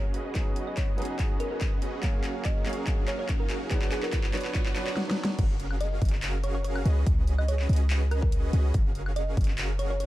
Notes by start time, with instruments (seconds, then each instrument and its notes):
Already playing: grand piano F#3 A#3 C#4 G#4 F5, supersaw synth C#4 F#4 G#4 A#4 F5, riser
0.14 808-style bass C#2, supersaw synth C#4 F#4 G#4 B4 D#5, closed hi-hat
0.33 808-style bass C#2, grand piano F#3 B3 C#4 D#4, supersaw synth C#4 F#4 B4, kick, clap, closed hi-hat
0.37 grand piano G#4
0.56 closed hi-hat
0.67 synth pluck D#5
0.77 synth pluck C#5, kick, clap, closed hi-hat
0.96 808-style bass C#2, grand piano F#3 B3 C#4 D#4, supersaw synth C#4 F#4 G#4 B4 D#5, closed hi-hat
1.00 grand piano G#4, closed hi-hat
1.05 closed hi-hat
1.19 kick, clap, closed hi-hat
1.40 synth pluck A#4, closed hi-hat
1.51 synth pluck A#4
1.61 kick, clap, closed hi-hat
1.82 808-style bass C#2, supersaw synth C#4 F#4 G#4 B4 D#5, closed hi-hat
2.01 grand piano F#3 A#3 C#4 F5, supersaw synth F#4, kick, clap, closed hi-hat
2.05 grand piano G#4
2.24 clap, closed hi-hat
2.45 synth pluck D#5, kick, clap, closed hi-hat
2.64 808-style bass F#1, grand piano F#3 A#3 C#4 G#4 F5, supersaw synth C#4 F#4 G#4 A#4 F5, clap, closed hi-hat
2.70 closed hi-hat
2.73 closed hi-hat
2.87 kick, clap, closed hi-hat
3.08 synth pluck C#5, clap, closed hi-hat
3.19 synth pluck C#5
3.29 synth pluck C#5, kick, clap, closed hi-hat
3.40 synth pluck A#4
3.50 808-style bass F#2, supersaw synth C#4 F#4 G#4 A#4 F5, clap, closed hi-hat
3.69 808-style bass B1, grand piano F#3 B3 D4 C#5, supersaw synth D4 F#4 B4 C#5, synth pluck G#4, kick, clap, closed hi-hat
3.73 grand piano B4
3.82 clap
3.92 synth pluck G#4, clap, closed hi-hat
4.03 synth pluck A#4, clap
4.13 kick, clap, closed hi-hat
4.24 clap
4.33 808-style bass B1, grand piano F#3 B3 D4 B4 C#5, supersaw synth D4 F#4 B4 C#5 F#5, clap, closed hi-hat
4.37 closed hi-hat
4.41 closed hi-hat
4.45 clap
4.55 kick, clap, closed hi-hat
4.66 clap
4.75 grand piano F#3 B3 C#4 D4 B4, clap, closed hi-hat
4.87 clap
4.97 snare
5.07 grand piano F#3 B3 C#4 D4 B4, snare
5.25 snare
5.39 808-style bass F#1, supersaw synth C#4 F#4 G#4 A#4 F5, kick, closed hi-hat, crash
5.60 closed hi-hat
5.71 high woodblock
5.81 synth pluck D#5, closed hi-hat
6.02 808-style bass F#1, supersaw synth C#4 F#4, kick, closed hi-hat
6.05 closed hi-hat
6.09 closed hi-hat
6.13 clap
6.23 clap, closed hi-hat
6.44 synth pluck C#5, closed hi-hat
6.55 synth pluck C#5
6.64 synth pluck C#5, closed hi-hat
6.76 high woodblock
6.86 808-style bass C#2, supersaw synth C#4 F#4 G#4 B4 D#5, closed hi-hat
7.06 808-style bass C#2, kick, closed hi-hat
7.27 closed hi-hat
7.38 synth pluck D#5, high woodblock
7.48 synth pluck C#5, closed hi-hat
7.59 clap
7.69 808-style bass C#2, supersaw synth C#4 F#4 G#4 B4 D#5, closed hi-hat
7.73 closed hi-hat
7.76 closed hi-hat
7.90 clap, closed hi-hat
8.11 synth pluck A#4, closed hi-hat, high woodblock
8.22 synth pluck A#4, kick
8.32 closed hi-hat
8.53 808-style bass C#2, supersaw synth C#4 F#4 G#4 B4 D#5, closed hi-hat
8.74 808-style bass F#1, supersaw synth C#4 F#4 G#4, kick, closed hi-hat
8.95 closed hi-hat
9.06 high woodblock
9.16 synth pluck D#5, closed hi-hat
9.37 808-style bass F#1, supersaw synth C#4 F#4 G#4 A#4, kick, closed hi-hat
9.41 closed hi-hat
9.44 closed hi-hat
9.48 clap
9.58 clap, closed hi-hat
9.79 synth pluck C#5, closed hi-hat
9.90 synth pluck C#5
10.00 synth pluck C#5, closed hi-hat